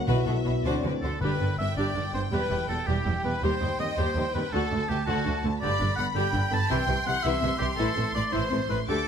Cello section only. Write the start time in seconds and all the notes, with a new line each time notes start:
0.08 B2
0.27 B2
0.45 B2
0.65 D3
0.83 D3
1.03 D3
1.22 G2
1.40 G2
1.59 G2
1.77 G2
1.96 G2
2.14 G2
2.32 E2
2.51 E2
2.69 E2
2.87 E2
3.06 E2
3.25 E2
3.43 D#2
3.61 D#2
3.80 D#2
3.98 D#2
4.16 D#2
4.34 D#2
4.52 D2
4.71 D2
4.89 D2
5.07 D2
5.26 D2
5.44 D2
5.62 G2
5.81 G2
5.97 G2
6.15 G2
6.34 G2
6.51 G2
6.69 C3
6.88 C3
7.06 C3
7.24 C3
7.43 C3
7.60 C3
7.78 A2
7.97 A2
8.15 A2
8.33 A2
8.52 A2
8.70 A2
8.89 D2